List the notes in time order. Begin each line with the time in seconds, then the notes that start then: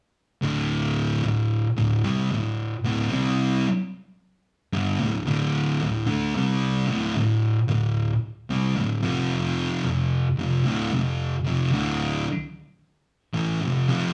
0.42 D2 A2 D3
1.24 D2 A2
1.78 D2 A2
2.03 C3 G3
2.31 D2 A2
2.84 D2 A2
3.11 C3 G3 C4
4.73 G2 D3
5.00 D2 A2
5.27 D2 A2 D3
5.82 D2 A2
6.07 D3 A3
6.36 C3 G3 C4
6.88 D2 A2
7.16 D2 A2
7.68 D2 A2
8.50 C3 G3
8.76 D2 A2
9.03 F2 C3 F3
9.85 F2 C3
10.39 F2 C3
10.65 D2 A2
10.93 F2 C3
11.46 F2 C3
11.72 D2 A2 D3
13.34 A2 E3
13.62 F2 C3
13.89 F2 C3 F3